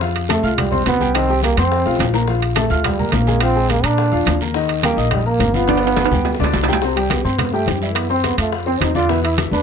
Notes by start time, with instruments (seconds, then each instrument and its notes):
Already playing: upright bass F2
0.01 upright piano F3 F4 F5, high bongo, high conga, long guiro
0.15 high bongo, high conga, high timbale
0.29 upright piano A3 A4 A5, trombone A3, high bongo, high conga, high timbale, short guiro
0.43 upright bass C2, upright piano F4 F5 F6, high bongo, high conga, short guiro
0.58 trombone G3, high bongo, high conga, low conga, high timbale, long guiro
0.72 upright piano C4 C5 C6, high conga, low conga
0.86 upright bass C2, trombone B3, high bongo, low bongo, high conga, high timbale, low timbale, short guiro
1.00 upright piano G3 G4 G5, high bongo, high conga, short guiro
1.15 upright piano D#3 D#4 D#5, trombone C4, high bongo, high conga, high timbale, long guiro
1.29 upright piano G3 G4 G5, high bongo, high conga
1.43 trombone A#3, high bongo, high conga, high timbale, short guiro
1.57 upright bass F2, upright piano C4 C5 C6, trombone C4, high bongo, high conga, high timbale, short guiro
1.71 high bongo, high conga, long guiro
1.86 upright bass B1, upright piano F3 F4 F5, high bongo, high conga
1.96 high bongo, high conga, short guiro
2.00 upright bass A#1, high timbale, low timbale
2.05 low bongo
2.14 upright piano A#3 A#4 A#5, low bongo, short guiro
2.27 upright piano F3 F4 F5, high bongo, high conga, long guiro
2.42 high bongo, high conga, high timbale
2.55 upright piano A3 A4 A5, trombone A3, high bongo, high conga, high timbale, short guiro
2.70 upright bass D2, upright piano F4 F5 F6, high bongo, high conga, short guiro
2.84 trombone G3, high bongo, high conga, low conga, high timbale, long guiro
2.99 upright piano A#3 A#4 A#5, high conga, low conga
3.12 upright bass A#1, trombone A#3, high bongo, low bongo, high conga, high timbale, low timbale, short guiro
3.27 upright piano G#3 G#4 G#5, high bongo, high conga, short guiro
3.40 upright piano F3 F4 F5, trombone C4, high bongo, high conga, high timbale, long guiro
3.55 upright piano G#3 G#4 G#5, high bongo, high conga
3.69 trombone A#3, high bongo, high conga, high timbale, short guiro
3.83 upright bass A#2, upright piano A#3 A#4 A#5, trombone D4, high bongo, high conga, high timbale, short guiro
3.97 high bongo, high conga, long guiro
4.12 upright bass E2, upright piano F3 F4 F5, high conga
4.26 upright bass D#2, high bongo, low bongo, high conga, high timbale, low timbale, short guiro
4.41 upright piano A#3 A#4 A#5, high bongo, high conga, short guiro
4.54 upright piano D#3 D#4 D#5, high bongo, high conga, long guiro
4.68 high bongo, high conga, high timbale
4.83 upright piano G3 G4 G5, trombone A#3, high bongo, high conga, high timbale, short guiro
4.97 upright bass A#1, upright piano D#4 D#5 D#6, high bongo, high conga, short guiro
5.11 trombone G3, high bongo, high conga, low conga, high timbale, long guiro
5.25 upright piano A#3 A#4 A#5, trombone A#3, high conga
5.39 upright bass G1, high bongo, low bongo, high conga, high timbale, short guiro
5.54 upright piano F3 F4 F5, trombone B3, high bongo, high conga, short guiro
5.68 upright piano D3 D4 D5, high bongo, high conga, high timbale, long guiro
5.77 high timbale
5.82 upright piano F3 F4 F5, high bongo
5.87 high timbale
5.96 high bongo, high conga, low timbale, short guiro
6.06 high timbale
6.11 upright bass D2, upright piano G3 G4 G5, high bongo, low conga, short guiro
6.25 high bongo, low timbale, long guiro
6.35 high bongo
6.40 upright bass D2, upright piano D3 D4 D5, low conga
6.44 low timbale
6.54 upright bass C2, low bongo, low timbale, short guiro
6.63 low bongo, low timbale
6.68 upright piano G3 G4 G5, low conga, short guiro
6.72 low bongo, low timbale
6.82 upright piano C3 C4 C5, high bongo, high conga, long guiro
6.96 upright piano G3 G4 G5, trombone G3, high bongo, high conga, high timbale
7.10 trombone B3, high bongo, high conga, high timbale, short guiro
7.24 upright bass G2, trombone C4, upright piano C4 C5 C6, high bongo, high conga, short guiro
7.38 trombone B3, high bongo, high conga, low conga, high timbale, long guiro
7.52 upright piano G3 G4 G5, trombone A3, high conga
7.66 upright bass F#2, high bongo, low bongo, high conga, high timbale, short guiro
7.81 upright piano E3 E4 E5, trombone G3, high bongo, short guiro
7.95 trombone B3, high bongo, high conga, high timbale, long guiro
8.10 upright piano C4 C5 C6, trombone C4, high bongo, high conga
8.24 trombone B3, high bongo, high conga, high timbale, short guiro
8.37 upright bass F2, upright piano F3 F4 F5, trombone A3, high bongo, high conga, high timbale, short guiro
8.52 high bongo, high conga, long guiro
8.66 upright piano C4 C5 C6, trombone C4, high conga
8.81 upright bass E2, trombone D#4, high bongo, low bongo, high conga, high timbale, low timbale, short guiro
8.95 upright piano D3 D4 D5, trombone F4, high bongo, high conga, short guiro
9.09 upright piano B2 B3 B4, trombone E4, high bongo, high conga, long guiro
9.23 upright piano E3 E4 E5, trombone E4, high bongo, high conga, high timbale
9.38 high bongo, high conga, high timbale, short guiro
9.51 upright bass E2, upright piano B3 B4 B5, trombone D4, high bongo, high conga, short guiro